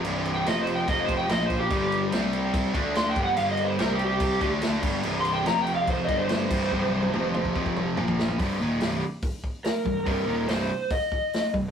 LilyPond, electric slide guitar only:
\new Staff \with { instrumentName = "Electric slide guitar" } { \time 4/4 \key f \major \tempo 4 = 144 \tuplet 3/2 { r4 g''8 ees''8 c''8 g''8 ees''8 c''8 g''8 ees''8 c''8 g'8~ } | g'8 r2 r8 \tuplet 3/2 { c'''8 g''8 fis''8 } | \tuplet 3/2 { f''8 ees''8 c''8 bes'8 g'8 g'8~ } g'8 r4. | \tuplet 3/2 { r8 c'''8 g''8 bes''8 g''8 f''8 c''8 ees''8 c''8 } c''4~ |
c''2 r2 | r2. bes'4 | bes'4 c''4 ees''4. r8 | }